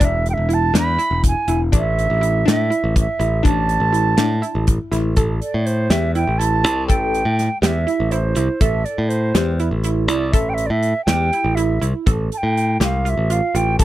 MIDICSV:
0, 0, Header, 1, 5, 480
1, 0, Start_track
1, 0, Key_signature, 0, "minor"
1, 0, Tempo, 491803
1, 11, Time_signature, 7, 3, 24, 8
1, 13511, End_track
2, 0, Start_track
2, 0, Title_t, "Flute"
2, 0, Program_c, 0, 73
2, 47, Note_on_c, 0, 76, 93
2, 268, Note_off_c, 0, 76, 0
2, 290, Note_on_c, 0, 79, 76
2, 326, Note_on_c, 0, 76, 83
2, 336, Note_off_c, 0, 79, 0
2, 524, Note_on_c, 0, 81, 95
2, 539, Note_off_c, 0, 76, 0
2, 747, Note_off_c, 0, 81, 0
2, 761, Note_on_c, 0, 83, 108
2, 1192, Note_off_c, 0, 83, 0
2, 1251, Note_on_c, 0, 80, 87
2, 1566, Note_off_c, 0, 80, 0
2, 1744, Note_on_c, 0, 76, 99
2, 2396, Note_off_c, 0, 76, 0
2, 2453, Note_on_c, 0, 76, 97
2, 2878, Note_off_c, 0, 76, 0
2, 2928, Note_on_c, 0, 76, 81
2, 3355, Note_off_c, 0, 76, 0
2, 3375, Note_on_c, 0, 81, 99
2, 4531, Note_off_c, 0, 81, 0
2, 5278, Note_on_c, 0, 74, 71
2, 5524, Note_on_c, 0, 72, 75
2, 5539, Note_off_c, 0, 74, 0
2, 5764, Note_on_c, 0, 76, 88
2, 5779, Note_off_c, 0, 72, 0
2, 5998, Note_off_c, 0, 76, 0
2, 6004, Note_on_c, 0, 79, 84
2, 6232, Note_on_c, 0, 81, 87
2, 6246, Note_off_c, 0, 79, 0
2, 6705, Note_off_c, 0, 81, 0
2, 6711, Note_on_c, 0, 79, 91
2, 7399, Note_off_c, 0, 79, 0
2, 7436, Note_on_c, 0, 79, 80
2, 7479, Note_on_c, 0, 76, 87
2, 7489, Note_off_c, 0, 79, 0
2, 7918, Note_on_c, 0, 72, 80
2, 7933, Note_off_c, 0, 76, 0
2, 8406, Note_on_c, 0, 76, 92
2, 8420, Note_off_c, 0, 72, 0
2, 8636, Note_on_c, 0, 74, 78
2, 8651, Note_off_c, 0, 76, 0
2, 8870, Note_on_c, 0, 72, 68
2, 8885, Note_off_c, 0, 74, 0
2, 9359, Note_off_c, 0, 72, 0
2, 9832, Note_on_c, 0, 74, 74
2, 10075, Note_on_c, 0, 76, 87
2, 10090, Note_off_c, 0, 74, 0
2, 10241, Note_on_c, 0, 79, 80
2, 10251, Note_off_c, 0, 76, 0
2, 10287, Note_on_c, 0, 76, 87
2, 10297, Note_off_c, 0, 79, 0
2, 10407, Note_on_c, 0, 74, 80
2, 10417, Note_off_c, 0, 76, 0
2, 10453, Note_on_c, 0, 76, 87
2, 10462, Note_off_c, 0, 74, 0
2, 10779, Note_off_c, 0, 76, 0
2, 10784, Note_on_c, 0, 79, 95
2, 11274, Note_on_c, 0, 76, 77
2, 11289, Note_off_c, 0, 79, 0
2, 11522, Note_off_c, 0, 76, 0
2, 12041, Note_on_c, 0, 81, 76
2, 12080, Note_on_c, 0, 79, 83
2, 12090, Note_off_c, 0, 81, 0
2, 12474, Note_off_c, 0, 79, 0
2, 12528, Note_on_c, 0, 77, 79
2, 12778, Note_on_c, 0, 76, 83
2, 12793, Note_off_c, 0, 77, 0
2, 13005, Note_on_c, 0, 77, 80
2, 13020, Note_off_c, 0, 76, 0
2, 13232, Note_on_c, 0, 79, 90
2, 13247, Note_off_c, 0, 77, 0
2, 13458, Note_off_c, 0, 79, 0
2, 13464, Note_on_c, 0, 81, 105
2, 13511, Note_off_c, 0, 81, 0
2, 13511, End_track
3, 0, Start_track
3, 0, Title_t, "Synth pluck"
3, 0, Program_c, 1, 84
3, 2, Note_on_c, 1, 62, 88
3, 357, Note_off_c, 1, 62, 0
3, 476, Note_on_c, 1, 64, 72
3, 657, Note_off_c, 1, 64, 0
3, 719, Note_on_c, 1, 62, 82
3, 899, Note_off_c, 1, 62, 0
3, 961, Note_on_c, 1, 64, 79
3, 1317, Note_off_c, 1, 64, 0
3, 1443, Note_on_c, 1, 64, 78
3, 1621, Note_off_c, 1, 64, 0
3, 1681, Note_on_c, 1, 62, 90
3, 2036, Note_off_c, 1, 62, 0
3, 2159, Note_on_c, 1, 64, 77
3, 2338, Note_off_c, 1, 64, 0
3, 2396, Note_on_c, 1, 62, 89
3, 2577, Note_off_c, 1, 62, 0
3, 2638, Note_on_c, 1, 64, 71
3, 2994, Note_off_c, 1, 64, 0
3, 3118, Note_on_c, 1, 64, 74
3, 3297, Note_off_c, 1, 64, 0
3, 3348, Note_on_c, 1, 62, 88
3, 3707, Note_off_c, 1, 62, 0
3, 3831, Note_on_c, 1, 64, 73
3, 4013, Note_off_c, 1, 64, 0
3, 4073, Note_on_c, 1, 62, 83
3, 4254, Note_off_c, 1, 62, 0
3, 4314, Note_on_c, 1, 64, 76
3, 4671, Note_off_c, 1, 64, 0
3, 4797, Note_on_c, 1, 64, 72
3, 4976, Note_off_c, 1, 64, 0
3, 5042, Note_on_c, 1, 69, 81
3, 5395, Note_off_c, 1, 69, 0
3, 5765, Note_on_c, 1, 67, 81
3, 5941, Note_off_c, 1, 67, 0
3, 6006, Note_on_c, 1, 64, 74
3, 6182, Note_off_c, 1, 64, 0
3, 6241, Note_on_c, 1, 64, 77
3, 6418, Note_off_c, 1, 64, 0
3, 6481, Note_on_c, 1, 64, 78
3, 6658, Note_off_c, 1, 64, 0
3, 6719, Note_on_c, 1, 69, 91
3, 7074, Note_off_c, 1, 69, 0
3, 7437, Note_on_c, 1, 67, 84
3, 7616, Note_off_c, 1, 67, 0
3, 7680, Note_on_c, 1, 64, 69
3, 7858, Note_off_c, 1, 64, 0
3, 7925, Note_on_c, 1, 64, 78
3, 8101, Note_off_c, 1, 64, 0
3, 8165, Note_on_c, 1, 64, 78
3, 8342, Note_off_c, 1, 64, 0
3, 8406, Note_on_c, 1, 69, 87
3, 8759, Note_off_c, 1, 69, 0
3, 9122, Note_on_c, 1, 67, 77
3, 9300, Note_off_c, 1, 67, 0
3, 9368, Note_on_c, 1, 64, 74
3, 9544, Note_off_c, 1, 64, 0
3, 9608, Note_on_c, 1, 64, 74
3, 9784, Note_off_c, 1, 64, 0
3, 9849, Note_on_c, 1, 64, 80
3, 10025, Note_off_c, 1, 64, 0
3, 10092, Note_on_c, 1, 69, 85
3, 10443, Note_off_c, 1, 69, 0
3, 10812, Note_on_c, 1, 67, 85
3, 10987, Note_off_c, 1, 67, 0
3, 11061, Note_on_c, 1, 64, 71
3, 11233, Note_off_c, 1, 64, 0
3, 11295, Note_on_c, 1, 64, 79
3, 11470, Note_off_c, 1, 64, 0
3, 11531, Note_on_c, 1, 64, 76
3, 11707, Note_off_c, 1, 64, 0
3, 11774, Note_on_c, 1, 69, 88
3, 12126, Note_off_c, 1, 69, 0
3, 12497, Note_on_c, 1, 67, 76
3, 12672, Note_off_c, 1, 67, 0
3, 12738, Note_on_c, 1, 65, 77
3, 12913, Note_off_c, 1, 65, 0
3, 12984, Note_on_c, 1, 65, 77
3, 13157, Note_off_c, 1, 65, 0
3, 13222, Note_on_c, 1, 65, 70
3, 13396, Note_off_c, 1, 65, 0
3, 13460, Note_on_c, 1, 69, 86
3, 13511, Note_off_c, 1, 69, 0
3, 13511, End_track
4, 0, Start_track
4, 0, Title_t, "Picked electric bass"
4, 0, Program_c, 2, 34
4, 3, Note_on_c, 2, 28, 98
4, 332, Note_off_c, 2, 28, 0
4, 365, Note_on_c, 2, 28, 77
4, 694, Note_off_c, 2, 28, 0
4, 720, Note_on_c, 2, 40, 98
4, 942, Note_off_c, 2, 40, 0
4, 1082, Note_on_c, 2, 28, 78
4, 1303, Note_off_c, 2, 28, 0
4, 1442, Note_on_c, 2, 28, 83
4, 1663, Note_off_c, 2, 28, 0
4, 1690, Note_on_c, 2, 33, 91
4, 2015, Note_off_c, 2, 33, 0
4, 2049, Note_on_c, 2, 33, 77
4, 2375, Note_off_c, 2, 33, 0
4, 2416, Note_on_c, 2, 45, 92
4, 2630, Note_off_c, 2, 45, 0
4, 2769, Note_on_c, 2, 33, 75
4, 2986, Note_off_c, 2, 33, 0
4, 3120, Note_on_c, 2, 33, 81
4, 3340, Note_off_c, 2, 33, 0
4, 3363, Note_on_c, 2, 33, 85
4, 3691, Note_off_c, 2, 33, 0
4, 3709, Note_on_c, 2, 33, 78
4, 4043, Note_off_c, 2, 33, 0
4, 4084, Note_on_c, 2, 45, 98
4, 4302, Note_off_c, 2, 45, 0
4, 4441, Note_on_c, 2, 33, 75
4, 4661, Note_off_c, 2, 33, 0
4, 4799, Note_on_c, 2, 33, 82
4, 5019, Note_off_c, 2, 33, 0
4, 5043, Note_on_c, 2, 33, 84
4, 5262, Note_off_c, 2, 33, 0
4, 5410, Note_on_c, 2, 45, 68
4, 5734, Note_off_c, 2, 45, 0
4, 5759, Note_on_c, 2, 40, 86
4, 6088, Note_off_c, 2, 40, 0
4, 6123, Note_on_c, 2, 33, 77
4, 6483, Note_off_c, 2, 33, 0
4, 6483, Note_on_c, 2, 36, 81
4, 6724, Note_off_c, 2, 36, 0
4, 6724, Note_on_c, 2, 33, 72
4, 7051, Note_off_c, 2, 33, 0
4, 7079, Note_on_c, 2, 45, 78
4, 7299, Note_off_c, 2, 45, 0
4, 7438, Note_on_c, 2, 40, 85
4, 7659, Note_off_c, 2, 40, 0
4, 7808, Note_on_c, 2, 33, 77
4, 8134, Note_off_c, 2, 33, 0
4, 8164, Note_on_c, 2, 36, 82
4, 8273, Note_off_c, 2, 36, 0
4, 8400, Note_on_c, 2, 33, 92
4, 8621, Note_off_c, 2, 33, 0
4, 8767, Note_on_c, 2, 45, 76
4, 9093, Note_off_c, 2, 45, 0
4, 9121, Note_on_c, 2, 40, 84
4, 9450, Note_off_c, 2, 40, 0
4, 9479, Note_on_c, 2, 33, 73
4, 9838, Note_off_c, 2, 33, 0
4, 9838, Note_on_c, 2, 36, 76
4, 10089, Note_off_c, 2, 36, 0
4, 10089, Note_on_c, 2, 33, 80
4, 10415, Note_off_c, 2, 33, 0
4, 10444, Note_on_c, 2, 45, 86
4, 10664, Note_off_c, 2, 45, 0
4, 10804, Note_on_c, 2, 40, 79
4, 11024, Note_off_c, 2, 40, 0
4, 11169, Note_on_c, 2, 33, 73
4, 11497, Note_off_c, 2, 33, 0
4, 11532, Note_on_c, 2, 36, 71
4, 11640, Note_off_c, 2, 36, 0
4, 11778, Note_on_c, 2, 33, 85
4, 11993, Note_off_c, 2, 33, 0
4, 12133, Note_on_c, 2, 45, 68
4, 12460, Note_off_c, 2, 45, 0
4, 12493, Note_on_c, 2, 36, 83
4, 12820, Note_off_c, 2, 36, 0
4, 12859, Note_on_c, 2, 33, 77
4, 13075, Note_off_c, 2, 33, 0
4, 13221, Note_on_c, 2, 33, 81
4, 13436, Note_off_c, 2, 33, 0
4, 13462, Note_on_c, 2, 33, 88
4, 13511, Note_off_c, 2, 33, 0
4, 13511, End_track
5, 0, Start_track
5, 0, Title_t, "Drums"
5, 7, Note_on_c, 9, 42, 81
5, 8, Note_on_c, 9, 36, 100
5, 105, Note_off_c, 9, 42, 0
5, 106, Note_off_c, 9, 36, 0
5, 253, Note_on_c, 9, 42, 51
5, 350, Note_off_c, 9, 42, 0
5, 490, Note_on_c, 9, 42, 54
5, 587, Note_off_c, 9, 42, 0
5, 732, Note_on_c, 9, 38, 103
5, 732, Note_on_c, 9, 42, 86
5, 830, Note_off_c, 9, 38, 0
5, 830, Note_off_c, 9, 42, 0
5, 969, Note_on_c, 9, 42, 60
5, 1067, Note_off_c, 9, 42, 0
5, 1207, Note_on_c, 9, 36, 96
5, 1207, Note_on_c, 9, 42, 82
5, 1305, Note_off_c, 9, 36, 0
5, 1305, Note_off_c, 9, 42, 0
5, 1443, Note_on_c, 9, 42, 61
5, 1540, Note_off_c, 9, 42, 0
5, 1686, Note_on_c, 9, 42, 83
5, 1689, Note_on_c, 9, 36, 104
5, 1783, Note_off_c, 9, 42, 0
5, 1786, Note_off_c, 9, 36, 0
5, 1939, Note_on_c, 9, 42, 59
5, 2036, Note_off_c, 9, 42, 0
5, 2175, Note_on_c, 9, 42, 61
5, 2273, Note_off_c, 9, 42, 0
5, 2420, Note_on_c, 9, 38, 107
5, 2420, Note_on_c, 9, 42, 79
5, 2518, Note_off_c, 9, 38, 0
5, 2518, Note_off_c, 9, 42, 0
5, 2652, Note_on_c, 9, 42, 58
5, 2749, Note_off_c, 9, 42, 0
5, 2888, Note_on_c, 9, 36, 92
5, 2891, Note_on_c, 9, 42, 77
5, 2986, Note_off_c, 9, 36, 0
5, 2989, Note_off_c, 9, 42, 0
5, 3128, Note_on_c, 9, 42, 54
5, 3226, Note_off_c, 9, 42, 0
5, 3367, Note_on_c, 9, 36, 108
5, 3369, Note_on_c, 9, 42, 69
5, 3464, Note_off_c, 9, 36, 0
5, 3466, Note_off_c, 9, 42, 0
5, 3602, Note_on_c, 9, 42, 55
5, 3700, Note_off_c, 9, 42, 0
5, 3845, Note_on_c, 9, 42, 54
5, 3943, Note_off_c, 9, 42, 0
5, 4077, Note_on_c, 9, 38, 114
5, 4077, Note_on_c, 9, 42, 77
5, 4174, Note_off_c, 9, 38, 0
5, 4174, Note_off_c, 9, 42, 0
5, 4325, Note_on_c, 9, 42, 56
5, 4422, Note_off_c, 9, 42, 0
5, 4560, Note_on_c, 9, 42, 73
5, 4566, Note_on_c, 9, 36, 98
5, 4657, Note_off_c, 9, 42, 0
5, 4663, Note_off_c, 9, 36, 0
5, 4806, Note_on_c, 9, 38, 32
5, 4806, Note_on_c, 9, 42, 64
5, 4904, Note_off_c, 9, 38, 0
5, 4904, Note_off_c, 9, 42, 0
5, 5039, Note_on_c, 9, 42, 72
5, 5045, Note_on_c, 9, 36, 98
5, 5137, Note_off_c, 9, 42, 0
5, 5143, Note_off_c, 9, 36, 0
5, 5287, Note_on_c, 9, 42, 54
5, 5384, Note_off_c, 9, 42, 0
5, 5529, Note_on_c, 9, 42, 57
5, 5627, Note_off_c, 9, 42, 0
5, 5763, Note_on_c, 9, 38, 99
5, 5763, Note_on_c, 9, 42, 70
5, 5860, Note_off_c, 9, 38, 0
5, 5860, Note_off_c, 9, 42, 0
5, 6004, Note_on_c, 9, 42, 54
5, 6102, Note_off_c, 9, 42, 0
5, 6252, Note_on_c, 9, 42, 73
5, 6350, Note_off_c, 9, 42, 0
5, 6497, Note_on_c, 9, 42, 52
5, 6595, Note_off_c, 9, 42, 0
5, 6730, Note_on_c, 9, 42, 74
5, 6731, Note_on_c, 9, 36, 99
5, 6827, Note_off_c, 9, 42, 0
5, 6828, Note_off_c, 9, 36, 0
5, 6973, Note_on_c, 9, 42, 53
5, 7071, Note_off_c, 9, 42, 0
5, 7212, Note_on_c, 9, 38, 30
5, 7212, Note_on_c, 9, 42, 50
5, 7310, Note_off_c, 9, 38, 0
5, 7310, Note_off_c, 9, 42, 0
5, 7449, Note_on_c, 9, 38, 100
5, 7449, Note_on_c, 9, 42, 71
5, 7546, Note_off_c, 9, 38, 0
5, 7546, Note_off_c, 9, 42, 0
5, 7691, Note_on_c, 9, 42, 53
5, 7788, Note_off_c, 9, 42, 0
5, 7918, Note_on_c, 9, 42, 70
5, 8015, Note_off_c, 9, 42, 0
5, 8157, Note_on_c, 9, 42, 54
5, 8255, Note_off_c, 9, 42, 0
5, 8401, Note_on_c, 9, 42, 77
5, 8402, Note_on_c, 9, 36, 99
5, 8498, Note_off_c, 9, 42, 0
5, 8500, Note_off_c, 9, 36, 0
5, 8644, Note_on_c, 9, 42, 52
5, 8742, Note_off_c, 9, 42, 0
5, 8885, Note_on_c, 9, 42, 62
5, 8983, Note_off_c, 9, 42, 0
5, 9124, Note_on_c, 9, 38, 104
5, 9124, Note_on_c, 9, 42, 78
5, 9222, Note_off_c, 9, 38, 0
5, 9222, Note_off_c, 9, 42, 0
5, 9365, Note_on_c, 9, 42, 61
5, 9462, Note_off_c, 9, 42, 0
5, 9600, Note_on_c, 9, 42, 71
5, 9698, Note_off_c, 9, 42, 0
5, 9843, Note_on_c, 9, 42, 57
5, 9941, Note_off_c, 9, 42, 0
5, 10086, Note_on_c, 9, 42, 71
5, 10087, Note_on_c, 9, 36, 103
5, 10184, Note_off_c, 9, 36, 0
5, 10184, Note_off_c, 9, 42, 0
5, 10324, Note_on_c, 9, 42, 55
5, 10421, Note_off_c, 9, 42, 0
5, 10567, Note_on_c, 9, 42, 54
5, 10664, Note_off_c, 9, 42, 0
5, 10810, Note_on_c, 9, 38, 98
5, 10810, Note_on_c, 9, 42, 78
5, 10908, Note_off_c, 9, 38, 0
5, 10908, Note_off_c, 9, 42, 0
5, 11055, Note_on_c, 9, 42, 50
5, 11152, Note_off_c, 9, 42, 0
5, 11293, Note_on_c, 9, 42, 66
5, 11391, Note_off_c, 9, 42, 0
5, 11537, Note_on_c, 9, 42, 50
5, 11634, Note_off_c, 9, 42, 0
5, 11778, Note_on_c, 9, 36, 103
5, 11778, Note_on_c, 9, 42, 71
5, 11876, Note_off_c, 9, 36, 0
5, 11876, Note_off_c, 9, 42, 0
5, 12023, Note_on_c, 9, 42, 54
5, 12121, Note_off_c, 9, 42, 0
5, 12273, Note_on_c, 9, 42, 50
5, 12370, Note_off_c, 9, 42, 0
5, 12503, Note_on_c, 9, 38, 104
5, 12503, Note_on_c, 9, 42, 82
5, 12600, Note_off_c, 9, 38, 0
5, 12600, Note_off_c, 9, 42, 0
5, 12748, Note_on_c, 9, 42, 57
5, 12845, Note_off_c, 9, 42, 0
5, 12981, Note_on_c, 9, 42, 80
5, 13079, Note_off_c, 9, 42, 0
5, 13225, Note_on_c, 9, 42, 58
5, 13323, Note_off_c, 9, 42, 0
5, 13462, Note_on_c, 9, 42, 84
5, 13465, Note_on_c, 9, 36, 100
5, 13511, Note_off_c, 9, 36, 0
5, 13511, Note_off_c, 9, 42, 0
5, 13511, End_track
0, 0, End_of_file